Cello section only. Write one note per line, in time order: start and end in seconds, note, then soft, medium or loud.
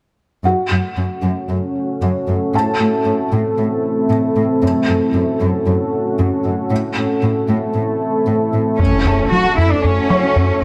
0.44 0.52 F#2 soft
0.71 0.79 F#2 soft
0.97 1.05 F#2 soft
1.23 1.31 F#2 soft
1.50 1.58 F#2 soft
2.02 2.10 F#2 soft
2.28 2.36 F#2 soft
2.54 2.62 A2 soft
2.80 2.88 A2 soft
3.06 3.14 A2 soft
3.32 3.40 A2 soft
3.58 3.66 A2 soft
4.10 4.18 A2 soft
4.36 4.44 A2 soft
4.63 4.71 F#2 soft
4.88 4.96 F#2 soft
5.14 5.22 F#2 soft
5.41 5.49 F#2 soft
5.67 5.75 F#2 soft
6.19 6.27 F#2 soft
6.45 6.53 F#2 soft
6.71 6.79 A2 soft
6.97 7.05 A2 soft
7.23 7.31 A2 soft
7.49 7.57 A2 soft
7.75 7.83 A2 soft
8.27 8.35 A2 soft
8.54 8.62 A2 soft
8.79 9.28 C#4 soft
9.32 9.57 F#4 soft
9.58 9.70 E4 soft
9.71 9.84 D4 soft
9.84 10.61 C#4 soft